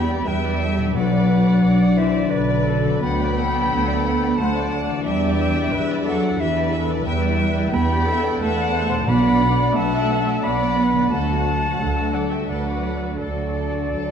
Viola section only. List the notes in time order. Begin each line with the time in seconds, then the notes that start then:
Already playing: G4
0.27 B4
0.61 A4
0.95 B4
1.63 D5
1.98 D5
2.32 B4
2.68 A4
3.02 B4
3.37 A4
4.38 C5
4.71 D5
5.73 B4
6.06 A4
6.40 G4
6.72 A4
7.05 B4
7.73 G4
8.06 A4
8.40 B4
8.75 C5
9.08 D5
9.75 E5
10.43 D5
10.78 B4
11.12 F#4
11.81 A4
12.49 B4
13.19 A4